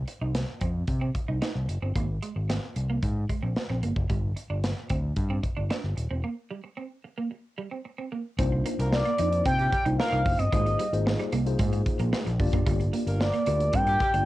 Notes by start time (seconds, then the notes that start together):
0.08 muted clean electric guitar stroke, closed hi-hat
0.21 C2 D#4
0.35 snare, closed hi-hat
0.61 F2 C4, kick, closed hi-hat
0.88 C3, kick, closed hi-hat
1.01 C4
1.15 muted clean electric guitar stroke, kick, closed hi-hat
1.28 C2 D#4
1.42 D#4, snare, closed hi-hat
1.55 C2
1.69 F#1, muted clean electric guitar stroke, closed hi-hat
1.82 G1 C4
1.96 G#1 A#3, kick, closed hi-hat
2.22 G#3, closed hi-hat
2.36 G#1, muted clean electric guitar stroke
2.49 C4, snare, closed hi-hat
2.76 C2, muted clean electric guitar stroke, closed hi-hat
2.90 A#3
3.02 G#2, muted clean electric guitar stroke, kick, closed hi-hat
3.29 G#3, kick, closed hi-hat
3.43 A#1 C4
3.56 muted clean electric guitar stroke, snare, closed hi-hat
3.70 A#1 C4
3.83 G1 A#3, closed hi-hat
3.96 F#1, kick
4.10 G1 G3, kick, closed hi-hat
4.36 muted clean electric guitar stroke, closed hi-hat
4.50 G1 D4
4.64 snare, closed hi-hat
4.90 D2 C4, kick, closed hi-hat
5.16 G2, kick, closed hi-hat
5.30 C4
5.43 muted clean electric guitar stroke, kick, closed hi-hat
5.57 G1 D4
5.70 D4, snare, closed hi-hat
5.84 G1
5.97 D#1, muted clean electric guitar stroke, closed hi-hat
6.11 E1 C4
6.24 A#3
6.51 G3
6.64 muted clean electric guitar stroke
6.77 C4
7.04 muted clean electric guitar stroke
7.18 A#3
7.31 muted clean electric guitar stroke
7.58 G3
7.71 C4
7.85 muted clean electric guitar stroke
7.98 C4
8.12 A#3
8.38 C2 A#3 C4 D4 D#4 F4 C5, kick, closed hi-hat
8.52 muted clean electric guitar stroke
8.65 A#3, closed hi-hat
8.79 C2 A#3 A#4, closed hi-hat
8.92 D5, muted clean electric guitar stroke, snare
9.05 A#3, closed hi-hat
9.18 F2 A#3 D4 D#4 F4 C5, closed hi-hat
9.32 closed hi-hat
9.45 C3 C4 G5, kick, closed hi-hat
9.59 G3 G4, muted clean electric guitar stroke, closed hi-hat
9.72 G3 G4 G5, kick, closed hi-hat
9.85 C2 A#3 D4 D#4 F4 C5, closed hi-hat
9.99 A#3 A#4 F5, snare
10.12 C2 D#4
10.26 F#1, muted clean electric guitar stroke, kick, open hi-hat
10.38 G1 C4 D#5, closed hi-hat
10.52 G#1 G#3 A#3 D#4 F4 G#4 C5, kick, closed hi-hat
10.66 muted clean electric guitar stroke, closed hi-hat
10.79 G3, closed hi-hat
10.93 G#1 A#3 D#4 F4 G#4 C5, closed hi-hat
11.06 muted clean electric guitar stroke, snare
11.19 G3, closed hi-hat
11.32 C2 A#3, closed hi-hat
11.46 A#3 D#4 F4 G#4 C5, closed hi-hat
11.59 G#2 G#3, kick, closed hi-hat
11.73 muted clean electric guitar stroke, closed hi-hat
11.86 kick, closed hi-hat
11.99 A#1 A#3, closed hi-hat
12.13 G#3, snare
12.26 A#1, muted clean electric guitar stroke, closed hi-hat
12.39 G1 A#3 D4 F4 G4 D5, kick, open hi-hat
12.53 F#1 A#3, kick, closed hi-hat
12.66 G1 G3, kick, closed hi-hat
12.80 muted clean electric guitar stroke, closed hi-hat
12.93 A#3, closed hi-hat
13.07 G1 A#3 A#4, closed hi-hat
13.20 D5, muted clean electric guitar stroke, snare
13.34 A#3, closed hi-hat
13.47 D2 A#3 D4 F4 G4 A#4, closed hi-hat
13.61 closed hi-hat
13.73 G2 C4 G5, kick, closed hi-hat
13.87 G3 G4, muted clean electric guitar stroke, closed hi-hat
14.00 G3 G4, kick, closed hi-hat
14.14 G1 A#3 D4 F4 G4 D5, closed hi-hat